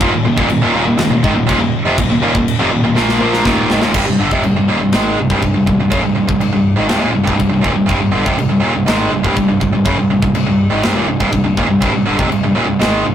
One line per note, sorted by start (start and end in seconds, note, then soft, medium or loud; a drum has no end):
0.00 0.12 D#1 medium
0.00 0.13 D#2 medium
0.00 0.13 A#2 loud
0.00 kick loud
0.00 crash medium
0.14 0.25 D#1 medium
0.14 0.26 D#2 medium
0.14 0.26 A#2 medium
0.26 0.37 D#1 medium
0.26 0.38 D#2 medium
0.26 0.39 A#2 medium
0.38 0.49 D#1 loud
0.38 0.49 D#2 medium
0.38 0.49 A#2 loud
0.38 kick medium
0.50 0.62 D#1 medium
0.50 0.62 D#2 medium
0.50 0.62 A#2 medium
0.50 crash medium
0.62 0.74 D#1 medium
0.62 0.75 D#2 medium
0.62 0.75 A#2 loud
0.75 0.86 D#1 medium
0.75 0.87 D#2 medium
0.75 0.87 A#2 loud
0.87 0.99 D#1 medium
0.87 0.99 D#2 medium
0.87 0.99 A#2 medium
0.98 1.11 D#1 medium
0.98 1.11 D#2 medium
0.98 1.11 A#2 medium
0.98 snare loud
0.98 crash medium
1.11 1.23 D#1 medium
1.11 1.24 D#2 medium
1.11 1.25 A#2 medium
1.24 1.35 G#1 medium
1.24 1.36 G#2 medium
1.24 1.37 D#3 loud
1.24 kick medium
1.36 1.48 D#1 medium
1.36 1.49 D#2 medium
1.36 1.49 A#2 medium
1.49 1.60 D#1 loud
1.49 1.60 D#2 loud
1.49 1.61 A#2 loud
1.49 kick medium
1.49 crash medium
1.60 1.84 D#1 medium
1.60 1.81 D#2 medium
1.60 1.81 A#2 medium
1.84 1.96 F1 medium
1.84 1.98 F2 medium
1.84 1.98 C3 loud
1.98 2.09 D#1 medium
1.98 2.08 D#2 medium
1.98 2.09 A#2 medium
1.98 kick loud
1.98 crash medium
2.10 2.21 D#1 medium
2.10 2.20 D#2 medium
2.10 2.21 A#2 medium
2.22 2.34 D#1 loud
2.22 2.33 D#2 loud
2.22 2.33 A#2 loud
2.34 2.58 D#1 medium
2.34 2.54 D#2 medium
2.34 2.54 A#2 medium
2.34 kick medium
2.48 crash medium
2.59 2.71 F1 medium
2.59 2.70 F2 medium
2.59 2.71 C3 medium
2.71 2.83 D#1 medium
2.71 2.82 D#2 medium
2.71 2.82 A#2 medium
2.83 2.96 D#1 medium
2.83 2.96 D#2 medium
2.83 2.95 A#2 medium
2.96 3.19 A#1 loud
2.96 3.19 A#2 loud
2.96 3.20 F3 loud
2.96 3.21 A#3 loud
2.96 snare medium
3.09 snare medium
3.20 3.44 A#1 medium
3.20 3.44 A#2 medium
3.20 3.45 F3 medium
3.20 3.46 A#3 medium
3.33 snare medium
3.45 3.68 D#1 medium
3.45 3.69 D#2 loud
3.45 3.70 A#2 loud
3.45 3.70 D#3 loud
3.45 kick medium
3.45 snare medium
3.70 3.81 G#1 loud
3.70 3.82 G#2 medium
3.70 3.82 D#3 loud
3.70 snare medium
3.81 3.94 D#1 medium
3.81 3.94 D#2 medium
3.81 3.94 A#2 loud
3.81 snare medium
3.94 4.06 C1 medium
3.94 4.06 C2 loud
3.94 4.06 G2 loud
3.94 kick loud
3.94 crash loud
3.94 china medium
4.07 4.18 C1 medium
4.07 4.18 C2 medium
4.07 4.17 G2 medium
4.18 4.31 G1 medium
4.18 4.31 G2 medium
4.18 4.31 D3 loud
4.31 4.43 F1 loud
4.31 4.43 F2 medium
4.31 4.44 C3 medium
4.31 kick medium
4.43 4.55 C1 medium
4.43 4.55 C2 medium
4.43 4.56 G2 medium
4.43 china medium
4.56 4.67 C1 medium
4.56 4.67 C2 medium
4.56 4.68 G2 medium
4.68 4.80 D#1 medium
4.68 4.80 D#2 medium
4.68 4.80 A#2 medium
4.80 4.92 C1 medium
4.80 4.92 C2 medium
4.80 4.93 G2 medium
4.92 5.16 G#1 medium
4.92 5.17 G#2 loud
4.92 5.17 D#3 loud
4.92 5.18 G#3 loud
4.92 snare loud
4.92 china medium
5.18 5.29 C1 medium
5.18 5.29 C2 soft
5.18 5.30 G2 medium
5.30 5.42 C1 medium
5.30 5.42 C2 medium
5.30 5.42 G2 medium
5.30 kick medium
5.42 5.54 C1 medium
5.42 5.54 C2 medium
5.42 5.56 G2 medium
5.42 kick medium
5.42 china soft
5.55 5.66 C1 medium
5.55 5.67 C2 medium
5.55 5.68 G2 medium
5.67 5.79 C1 medium
5.67 5.80 C2 medium
5.67 5.80 G2 medium
5.67 kick medium
5.80 5.91 C1 medium
5.80 5.92 C2 medium
5.80 5.93 G2 medium
5.92 6.03 F#1 loud
5.92 6.04 F#2 loud
5.92 6.04 C#3 loud
5.92 kick loud
5.92 china medium
6.05 6.16 C1 medium
6.05 6.16 C2 medium
6.05 6.17 G2 medium
6.17 6.28 C1 medium
6.17 6.29 C2 medium
6.17 6.29 G2 medium
6.29 6.40 C1 medium
6.29 6.42 C2 medium
6.29 6.42 G2 medium
6.29 kick medium
6.41 6.53 C1 medium
6.41 6.54 C2 medium
6.41 6.54 G2 medium
6.41 china medium
6.54 6.77 C1 medium
6.54 6.74 C2 medium
6.54 6.75 G2 medium
6.79 6.90 G#1 loud
6.79 6.90 G#2 loud
6.79 6.90 D#3 loud
6.89 7.02 C1 loud
6.89 7.02 C2 medium
6.89 7.03 G2 loud
6.89 snare loud
6.89 china medium
7.03 7.14 D#1 medium
7.03 7.15 D#2 medium
7.03 7.15 A#2 loud
7.16 7.27 C1 medium
7.16 7.27 C2 medium
7.16 7.28 G2 medium
7.24 7.39 C1 medium
7.24 7.35 C2 loud
7.24 7.35 G2 medium
7.24 kick medium
7.28 7.39 C2 medium
7.28 7.40 G2 medium
7.36 7.51 C1 medium
7.36 7.48 C2 medium
7.36 7.48 G2 medium
7.36 kick medium
7.36 china medium
7.41 7.52 C2 medium
7.41 7.52 G2 medium
7.49 7.63 C1 medium
7.49 7.61 C2 medium
7.49 7.61 G2 medium
7.53 7.65 C2 medium
7.53 7.65 G2 medium
7.61 7.76 D#1 loud
7.61 7.73 D#2 medium
7.61 7.73 A#2 loud
7.61 kick medium
7.65 7.76 D#2 medium
7.65 7.77 A#2 loud
7.73 7.88 C1 medium
7.73 7.85 C2 medium
7.77 7.88 C2 medium
7.77 7.89 G2 medium
7.89 8.01 C1 medium
7.89 8.01 C2 loud
7.89 8.01 G2 loud
7.89 kick loud
7.89 china medium
8.01 8.12 C1 medium
8.01 8.14 C2 medium
8.01 8.14 G2 medium
8.13 8.25 G1 loud
8.13 8.26 G2 medium
8.13 8.26 D3 loud
8.26 8.37 F1 loud
8.26 8.38 F2 medium
8.26 8.38 C3 medium
8.26 kick medium
8.38 8.50 C1 medium
8.38 8.50 C2 medium
8.38 8.50 G2 medium
8.38 china medium
8.51 8.62 C1 medium
8.51 8.63 C2 medium
8.51 8.63 G2 medium
8.63 8.74 D#1 medium
8.63 8.75 D#2 medium
8.63 8.75 A#2 loud
8.75 8.86 C1 medium
8.75 8.87 C2 medium
8.75 8.88 G2 medium
8.87 9.10 G#1 loud
8.87 9.12 G#2 loud
8.87 9.12 D#3 loud
8.87 9.12 G#3 loud
8.87 snare loud
8.87 china medium
9.11 9.23 C1 medium
9.11 9.24 C2 medium
9.11 9.25 G2 medium
9.24 9.36 C1 loud
9.24 9.36 C2 medium
9.24 9.37 G2 medium
9.24 kick medium
9.36 9.48 C1 medium
9.36 9.48 C2 medium
9.36 9.49 G2 medium
9.36 kick medium
9.36 china soft
9.49 9.60 C1 medium
9.49 9.61 C2 medium
9.49 9.61 G2 medium
9.61 9.73 C1 medium
9.61 9.73 C2 medium
9.61 9.74 G2 medium
9.61 kick medium
9.74 9.85 C1 medium
9.74 9.85 C2 medium
9.74 9.86 G2 medium
9.85 9.97 F#1 medium
9.85 9.97 F#2 loud
9.85 9.98 C#3 loud
9.85 kick loud
9.85 china medium
9.99 10.10 C1 medium
9.99 10.10 C2 medium
9.99 10.10 G2 medium
10.11 10.22 C1 medium
10.11 10.22 C2 medium
10.11 10.22 G2 medium
10.22 10.34 C1 medium
10.22 10.33 C2 medium
10.22 10.34 G2 medium
10.22 kick medium
10.34 10.46 C1 medium
10.34 10.45 C2 medium
10.34 10.46 G2 medium
10.34 china medium
10.46 10.70 C1 medium
10.46 10.66 C2 medium
10.46 10.67 G2 medium
10.71 10.83 G#1 loud
10.71 10.83 G#2 medium
10.71 10.83 D#3 loud
10.83 10.95 C1 medium
10.83 10.95 C2 loud
10.83 10.96 G2 loud
10.83 snare loud
10.83 china medium
10.95 11.07 D#1 medium
10.95 11.08 D#2 medium
10.95 11.08 A#2 medium
11.07 11.19 C1 medium
11.07 11.19 C2 medium
11.07 11.20 G2 medium
11.20 11.32 C1 medium
11.20 11.32 C2 medium
11.20 11.32 G2 medium
11.20 kick medium
11.32 11.43 C1 medium
11.32 11.45 C2 medium
11.32 11.45 G2 medium
11.32 kick medium
11.32 china medium
11.44 11.56 C1 medium
11.44 11.57 C2 medium
11.44 11.58 G2 medium
11.57 11.68 D#1 medium
11.57 11.69 D#2 medium
11.57 11.69 A#2 medium
11.57 kick medium
11.69 11.81 C1 medium
11.69 11.81 C2 medium
11.69 11.82 G2 medium
11.82 11.93 C1 medium
11.82 11.93 C2 medium
11.82 11.94 G2 loud
11.82 kick loud
11.82 china medium
11.94 12.05 C1 medium
11.94 12.06 C2 medium
11.94 12.05 G2 medium
12.06 12.18 G1 medium
12.06 12.18 G2 loud
12.06 12.19 D3 loud
12.19 12.30 F1 loud
12.19 12.31 F2 medium
12.19 12.31 C3 medium
12.19 kick medium
12.31 12.42 C1 medium
12.31 12.42 C2 medium
12.31 12.42 G2 medium
12.31 china medium
12.43 12.55 C1 medium
12.43 12.54 C2 medium
12.43 12.55 G2 medium
12.55 12.67 D#1 medium
12.55 12.67 D#2 medium
12.55 12.68 A#2 loud
12.67 12.79 C1 medium
12.67 12.80 C2 medium
12.67 12.81 G2 medium
12.80 13.03 G#1 loud
12.80 13.05 G#2 medium
12.80 13.05 D#3 loud
12.80 13.05 G#3 loud
12.80 snare loud
12.80 china medium
13.05 13.15 C1 medium
13.05 13.15 C2 medium
13.05 13.15 G2 medium